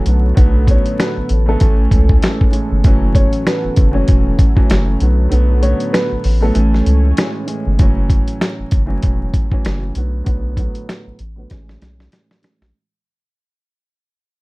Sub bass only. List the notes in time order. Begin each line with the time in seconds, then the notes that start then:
0.06 B1
0.37 B1
1.17 A1
1.30 A1
1.61 A1
1.91 C#2
2.71 G1
2.85 F#1
3.64 F#1
3.77 F#1
4.09 E1
4.70 F#1
5.01 B1
5.32 B1
6.12 A1
6.25 A1
6.56 A1
6.86 C#2
7.66 G1
7.79 F#1
8.59 F#1
8.72 F#1
9.03 E1
9.65 F#1
9.96 B1
10.27 B1
11.07 A1
11.20 A1
11.51 A1
11.82 B1
12.61 A#1